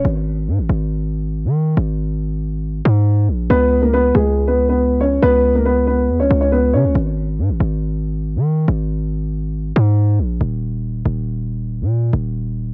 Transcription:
0.05 0.49 G#1 loud
0.48 0.60 G#2 loud
0.59 0.69 G#1 loud
0.69 1.47 G#1 loud
1.45 1.76 D#3 loud
1.77 2.81 G#1 loud
2.85 3.30 G#2 loud
3.28 3.49 A#1 loud
3.50 4.12 C#2 loud
3.50 3.81 B3 medium
3.50 3.80 B4 loud
3.82 3.92 A#3 medium
3.82 3.92 A#4 medium
3.93 4.13 B3 medium
3.93 4.12 B4 medium
4.15 5.19 C#2 loud
4.15 4.46 G#3 medium
4.15 4.45 G#4 medium
4.48 4.67 B3 medium
4.48 4.66 B4 medium
4.69 5.00 B3 medium
4.69 4.99 B4 medium
5.01 5.20 C#4 medium
5.01 5.20 C#5 medium
5.23 6.11 C#2 loud
5.23 5.54 B3 medium
5.23 5.53 B4 loud
5.55 5.65 A#3 medium
5.55 5.65 A#4 medium
5.65 5.85 B3 medium
5.65 5.85 B4 medium
5.87 6.18 B3 medium
5.87 6.18 B4 medium
6.09 6.21 E2 medium
6.20 6.30 C#2 loud
6.20 6.39 C#4 medium
6.20 6.39 C#5 medium
6.31 6.75 C#2 loud
6.41 6.51 C#4 medium
6.41 6.51 C#5 medium
6.52 6.72 B3 medium
6.52 6.71 B4 medium
6.74 6.86 C#3 loud
6.74 6.93 C#4 medium
6.74 6.93 C#5 medium
6.85 6.95 C#2 loud
6.95 7.40 G#1 loud
7.39 7.51 G#2 loud
7.49 7.60 G#1 loud
7.60 8.37 G#1 loud
8.36 8.66 D#3 loud
8.68 9.72 G#1 loud
9.76 10.21 G#2 loud
10.19 10.40 A#1 loud
10.41 11.03 D#1 loud
11.05 11.82 D#1 loud
11.81 12.12 A#2 loud
12.13 12.74 D#1 loud

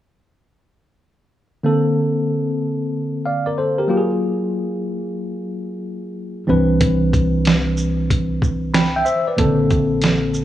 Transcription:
1.63 3.86 D3 medium
1.63 3.86 A#3 medium
1.63 3.86 C4 soft
1.63 3.23 A4 medium
3.25 3.45 D5 soft
3.25 3.46 F5 medium
3.46 3.57 A#4 soft
3.46 3.57 D5 medium
3.58 3.79 A4 soft
3.58 3.78 C5 medium
3.78 3.89 G4 medium
3.78 4.09 A#4 medium
3.88 6.43 F#3 medium
3.88 6.44 A#3 medium
3.88 6.44 F4 medium
3.88 3.99 G4 medium
3.97 6.48 G#4 medium
6.47 9.03 C2 medium
6.47 9.02 E3 medium
6.47 9.02 C4 medium
6.47 9.03 D4 medium
6.47 8.71 B4 medium
6.81 kick loud
6.81 closed hi-hat medium
7.13 kick medium
7.13 closed hi-hat soft
7.13 shaker soft
7.45 snare medium
7.45 closed hi-hat medium
7.77 shaker soft
8.11 kick medium
8.11 closed hi-hat medium
8.42 kick medium
8.42 shaker soft
8.74 8.95 G5 soft
8.74 8.94 B5 soft
8.74 snare loud
8.74 closed hi-hat medium
8.96 9.04 E5 medium
8.96 9.06 G5 medium
9.05 9.26 C5 medium
9.05 9.26 E5 medium
9.05 shaker medium
9.28 9.59 B4 soft
9.28 9.58 D5 medium
9.37 10.45 A#1 medium
9.37 9.46 C#3 medium
9.37 10.45 A#3 medium
9.37 10.45 C4 medium
9.37 10.45 A4 medium
9.37 kick medium
9.37 closed hi-hat medium
9.44 10.45 D3 medium
9.71 kick medium
9.71 closed hi-hat soft
9.71 shaker soft
10.02 snare medium
10.02 closed hi-hat medium
10.34 shaker soft

